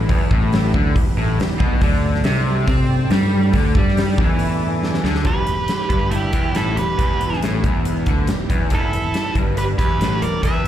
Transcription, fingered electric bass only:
0, 0, Header, 1, 2, 480
1, 0, Start_track
1, 0, Key_signature, 1, "minor"
1, 0, Tempo, 430725
1, 111, Time_signature, 4, 2, 24, 8
1, 11898, End_track
2, 0, Start_track
2, 0, Title_t, "Fingered electric bass"
2, 0, Program_c, 0, 33
2, 107, Note_on_c, 0, 28, 86
2, 331, Note_off_c, 0, 28, 0
2, 344, Note_on_c, 0, 33, 95
2, 791, Note_off_c, 0, 33, 0
2, 822, Note_on_c, 0, 38, 90
2, 1047, Note_off_c, 0, 38, 0
2, 1064, Note_on_c, 0, 28, 78
2, 1287, Note_off_c, 0, 28, 0
2, 1306, Note_on_c, 0, 33, 87
2, 1528, Note_off_c, 0, 33, 0
2, 1539, Note_on_c, 0, 28, 79
2, 1764, Note_off_c, 0, 28, 0
2, 1778, Note_on_c, 0, 35, 95
2, 2003, Note_off_c, 0, 35, 0
2, 2022, Note_on_c, 0, 38, 90
2, 2467, Note_off_c, 0, 38, 0
2, 2485, Note_on_c, 0, 36, 88
2, 2937, Note_off_c, 0, 36, 0
2, 2974, Note_on_c, 0, 48, 84
2, 3422, Note_off_c, 0, 48, 0
2, 3455, Note_on_c, 0, 43, 87
2, 3902, Note_off_c, 0, 43, 0
2, 3934, Note_on_c, 0, 38, 90
2, 4158, Note_off_c, 0, 38, 0
2, 4180, Note_on_c, 0, 43, 93
2, 4624, Note_off_c, 0, 43, 0
2, 4658, Note_on_c, 0, 40, 98
2, 5573, Note_off_c, 0, 40, 0
2, 5617, Note_on_c, 0, 38, 95
2, 5840, Note_off_c, 0, 38, 0
2, 5854, Note_on_c, 0, 28, 77
2, 6079, Note_off_c, 0, 28, 0
2, 6096, Note_on_c, 0, 28, 70
2, 6320, Note_off_c, 0, 28, 0
2, 6576, Note_on_c, 0, 31, 80
2, 7024, Note_off_c, 0, 31, 0
2, 7057, Note_on_c, 0, 28, 82
2, 7281, Note_off_c, 0, 28, 0
2, 7302, Note_on_c, 0, 33, 76
2, 7525, Note_off_c, 0, 33, 0
2, 7545, Note_on_c, 0, 28, 78
2, 7767, Note_off_c, 0, 28, 0
2, 7788, Note_on_c, 0, 28, 82
2, 8232, Note_off_c, 0, 28, 0
2, 8268, Note_on_c, 0, 33, 81
2, 8489, Note_off_c, 0, 33, 0
2, 8508, Note_on_c, 0, 28, 81
2, 8953, Note_off_c, 0, 28, 0
2, 8991, Note_on_c, 0, 38, 76
2, 9211, Note_off_c, 0, 38, 0
2, 9228, Note_on_c, 0, 28, 71
2, 9450, Note_off_c, 0, 28, 0
2, 9471, Note_on_c, 0, 28, 92
2, 9692, Note_off_c, 0, 28, 0
2, 9711, Note_on_c, 0, 28, 82
2, 9932, Note_off_c, 0, 28, 0
2, 9949, Note_on_c, 0, 28, 75
2, 10171, Note_off_c, 0, 28, 0
2, 10420, Note_on_c, 0, 31, 79
2, 10871, Note_off_c, 0, 31, 0
2, 10908, Note_on_c, 0, 28, 78
2, 11131, Note_off_c, 0, 28, 0
2, 11139, Note_on_c, 0, 33, 86
2, 11367, Note_off_c, 0, 33, 0
2, 11390, Note_on_c, 0, 28, 76
2, 11612, Note_off_c, 0, 28, 0
2, 11619, Note_on_c, 0, 28, 74
2, 11898, Note_off_c, 0, 28, 0
2, 11898, End_track
0, 0, End_of_file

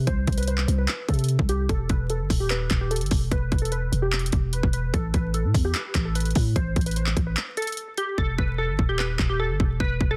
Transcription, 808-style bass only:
0, 0, Header, 1, 2, 480
1, 0, Start_track
1, 0, Key_signature, 1, "minor"
1, 0, Tempo, 405405
1, 85, Time_signature, 4, 2, 24, 8
1, 12037, End_track
2, 0, Start_track
2, 0, Title_t, "808-style bass"
2, 0, Program_c, 0, 38
2, 85, Note_on_c, 0, 36, 113
2, 315, Note_off_c, 0, 36, 0
2, 326, Note_on_c, 0, 36, 99
2, 786, Note_off_c, 0, 36, 0
2, 805, Note_on_c, 0, 36, 106
2, 1036, Note_off_c, 0, 36, 0
2, 1284, Note_on_c, 0, 48, 105
2, 1630, Note_off_c, 0, 48, 0
2, 1645, Note_on_c, 0, 36, 104
2, 1991, Note_off_c, 0, 36, 0
2, 2005, Note_on_c, 0, 28, 106
2, 2235, Note_off_c, 0, 28, 0
2, 2246, Note_on_c, 0, 28, 110
2, 2604, Note_on_c, 0, 31, 99
2, 2622, Note_off_c, 0, 28, 0
2, 2719, Note_off_c, 0, 31, 0
2, 2724, Note_on_c, 0, 27, 106
2, 3185, Note_off_c, 0, 27, 0
2, 3204, Note_on_c, 0, 27, 106
2, 3565, Note_on_c, 0, 31, 100
2, 3582, Note_off_c, 0, 27, 0
2, 3679, Note_off_c, 0, 31, 0
2, 3685, Note_on_c, 0, 28, 103
2, 3915, Note_off_c, 0, 28, 0
2, 3924, Note_on_c, 0, 28, 115
2, 4155, Note_off_c, 0, 28, 0
2, 4166, Note_on_c, 0, 28, 101
2, 4626, Note_off_c, 0, 28, 0
2, 4645, Note_on_c, 0, 28, 101
2, 5106, Note_off_c, 0, 28, 0
2, 5124, Note_on_c, 0, 28, 104
2, 5470, Note_off_c, 0, 28, 0
2, 5485, Note_on_c, 0, 28, 103
2, 5831, Note_off_c, 0, 28, 0
2, 5845, Note_on_c, 0, 33, 113
2, 6075, Note_off_c, 0, 33, 0
2, 6086, Note_on_c, 0, 33, 107
2, 6445, Note_on_c, 0, 45, 98
2, 6462, Note_off_c, 0, 33, 0
2, 6559, Note_off_c, 0, 45, 0
2, 6565, Note_on_c, 0, 40, 104
2, 6795, Note_off_c, 0, 40, 0
2, 7044, Note_on_c, 0, 33, 107
2, 7505, Note_off_c, 0, 33, 0
2, 7526, Note_on_c, 0, 45, 106
2, 7756, Note_off_c, 0, 45, 0
2, 7765, Note_on_c, 0, 33, 109
2, 7995, Note_off_c, 0, 33, 0
2, 8006, Note_on_c, 0, 33, 104
2, 8466, Note_off_c, 0, 33, 0
2, 8485, Note_on_c, 0, 33, 104
2, 8715, Note_off_c, 0, 33, 0
2, 9685, Note_on_c, 0, 28, 114
2, 9915, Note_off_c, 0, 28, 0
2, 9926, Note_on_c, 0, 28, 106
2, 10284, Note_on_c, 0, 31, 97
2, 10302, Note_off_c, 0, 28, 0
2, 10399, Note_off_c, 0, 31, 0
2, 10405, Note_on_c, 0, 27, 105
2, 10866, Note_off_c, 0, 27, 0
2, 10884, Note_on_c, 0, 27, 104
2, 11245, Note_on_c, 0, 31, 103
2, 11263, Note_off_c, 0, 27, 0
2, 11359, Note_off_c, 0, 31, 0
2, 11366, Note_on_c, 0, 28, 102
2, 11596, Note_off_c, 0, 28, 0
2, 11605, Note_on_c, 0, 28, 115
2, 11835, Note_off_c, 0, 28, 0
2, 11846, Note_on_c, 0, 28, 103
2, 12037, Note_off_c, 0, 28, 0
2, 12037, End_track
0, 0, End_of_file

